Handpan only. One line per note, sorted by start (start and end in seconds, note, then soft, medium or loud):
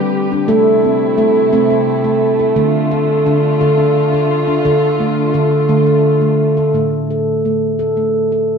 0.00 0.31 G3 medium
0.00 0.32 G4 medium
0.32 0.49 D4 medium
0.48 0.77 A3 medium
0.48 0.84 A4 medium
0.84 1.19 C4 medium
1.18 1.47 A3 medium
1.18 1.53 A4 medium
1.53 2.03 A3 medium
1.53 1.71 C4 medium
1.70 2.05 A4 medium
2.04 2.40 A3 medium
2.39 2.57 A4 medium
2.56 2.85 D3 medium
2.56 2.92 A3 medium
2.91 3.27 A4 medium
3.26 3.55 D3 medium
3.26 3.61 D4 medium
3.61 4.47 D3 medium
3.61 3.79 A4 medium
3.78 4.13 D4 medium
4.13 4.49 A4 medium
4.48 4.66 D4 medium
4.65 4.94 D3 medium
4.65 5.01 A4 medium
5.00 5.35 A3 medium
5.34 5.64 D3 medium
5.34 5.70 A4 medium
5.69 6.56 D3 medium
5.69 5.87 A3 medium
5.86 6.22 A4 medium
6.21 6.57 A3 medium
6.57 6.75 A4 medium
6.74 8.58 A2 medium
6.74 7.10 A3 medium
7.11 7.45 A4 soft
7.45 7.80 A3 medium
7.79 7.97 A4 medium
7.97 8.32 A3 soft
8.32 8.58 A4 soft